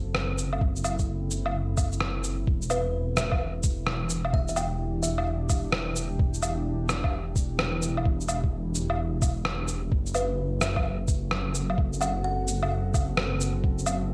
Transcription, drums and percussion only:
0.15 cross-stick loud
0.38 shaker medium
0.53 low woodblock medium
0.61 kick loud
0.76 shaker soft
0.84 low woodblock medium
0.84 shaker medium
0.99 kick medium
0.99 shaker soft
1.31 shaker medium
1.46 low woodblock medium
1.77 kick loud
1.77 low woodblock soft
1.77 shaker medium
1.92 shaker soft
2.01 cross-stick loud
2.24 shaker medium
2.47 kick loud
2.62 shaker soft
2.70 low woodblock medium
2.70 shaker medium
3.17 cross-stick loud
3.17 shaker medium
3.32 kick loud
3.32 low woodblock medium
3.63 kick loud
3.63 shaker medium
3.87 cross-stick loud
4.10 shaker medium
4.25 low woodblock medium
4.33 kick loud
4.48 shaker soft
4.56 low woodblock medium
4.56 shaker medium
5.03 shaker medium
5.18 low woodblock medium
5.50 kick loud
5.50 low woodblock soft
5.50 shaker medium
5.72 cross-stick loud
5.96 shaker medium
6.19 kick loud
6.34 shaker soft
6.43 low woodblock medium
6.43 shaker medium
6.89 cross-stick loud
6.89 shaker medium
7.04 kick loud
7.04 low woodblock medium
7.36 kick loud
7.36 shaker medium
7.59 cross-stick loud
7.82 shaker medium
7.97 low woodblock medium
8.05 kick loud
8.21 shaker soft
8.29 low woodblock medium
8.29 shaker medium
8.44 kick medium
8.75 shaker medium
8.90 low woodblock medium
9.22 kick loud
9.22 low woodblock soft
9.22 shaker medium
9.45 cross-stick loud
9.68 shaker medium
9.92 kick loud
10.06 shaker soft
10.15 low woodblock medium
10.15 shaker medium
10.61 cross-stick loud
10.61 shaker medium
10.76 kick loud
10.76 low woodblock medium
11.08 kick loud
11.08 shaker medium
11.31 cross-stick loud
11.55 shaker medium
11.70 low woodblock medium
11.78 kick loud
11.93 shaker soft
12.01 low woodblock medium
12.01 shaker medium
12.48 shaker medium
12.63 low woodblock medium
12.94 kick loud
12.94 low woodblock soft
12.94 shaker medium
13.17 cross-stick loud
13.41 shaker medium
13.64 kick loud
13.79 shaker soft
13.86 low woodblock medium
13.86 shaker medium

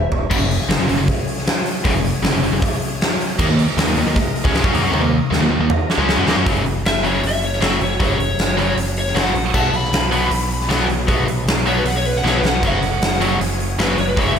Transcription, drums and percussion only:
0.12 floor tom medium
0.31 kick loud
0.31 crash loud
0.51 open hi-hat medium
0.61 snare soft
0.70 snare loud
0.70 open hi-hat medium
0.89 open hi-hat medium
1.08 kick loud
1.08 open hi-hat medium
1.27 open hi-hat medium
1.38 snare soft
1.46 snare loud
1.46 open hi-hat medium
1.66 open hi-hat medium
1.85 kick loud
1.85 open hi-hat medium
2.05 open hi-hat medium
2.24 snare loud
2.24 open hi-hat medium
2.43 open hi-hat medium
2.62 kick loud
2.62 open hi-hat medium
2.82 open hi-hat medium
3.01 snare loud
3.01 open hi-hat medium
3.20 open hi-hat medium
3.39 kick loud
3.39 crash medium
3.59 open hi-hat medium
3.78 snare loud
3.78 open hi-hat medium
3.97 open hi-hat medium
4.16 kick loud
4.16 open hi-hat medium
4.36 open hi-hat medium
4.45 kick loud
4.45 snare soft
4.55 snare medium
4.55 open hi-hat medium
4.64 kick loud
4.74 open hi-hat medium
4.94 high tom medium
5.33 snare medium
5.70 mid tom loud
5.90 snare medium
6.09 snare loud
6.28 snare medium
6.46 kick loud
6.46 open hi-hat medium
6.66 open hi-hat medium
6.85 snare loud
6.85 open hi-hat medium
7.04 open hi-hat medium
7.23 open hi-hat medium
7.42 open hi-hat medium
7.53 snare soft
7.61 snare loud
7.61 open hi-hat medium
7.81 open hi-hat medium
8.00 kick loud
8.00 open hi-hat medium
8.20 open hi-hat medium
8.39 snare loud
8.39 open hi-hat medium
8.58 open hi-hat medium
8.77 open hi-hat medium
8.96 open hi-hat medium
9.07 snare soft
9.16 snare loud
9.16 open hi-hat medium
9.35 open hi-hat medium
9.54 kick loud
9.54 crash medium
9.73 open hi-hat medium
9.84 snare soft
9.93 snare loud
9.93 open hi-hat medium
10.12 open hi-hat medium
10.31 open hi-hat medium
10.51 open hi-hat medium
10.61 snare soft
10.70 snare loud
10.70 open hi-hat medium
10.89 open hi-hat medium
11.08 kick loud
11.08 open hi-hat medium
11.28 open hi-hat medium
11.47 snare loud
11.47 open hi-hat medium
11.66 open hi-hat medium
11.85 open hi-hat medium
12.05 open hi-hat medium
12.16 snare soft
12.26 snare medium
12.45 snare loud
12.63 kick loud
12.63 crash medium
12.82 open hi-hat medium
13.02 snare loud
13.02 open hi-hat medium
13.21 open hi-hat medium
13.41 open hi-hat medium
13.60 open hi-hat medium
13.79 snare loud
13.79 open hi-hat medium
13.98 open hi-hat medium
14.17 kick loud
14.17 open hi-hat medium

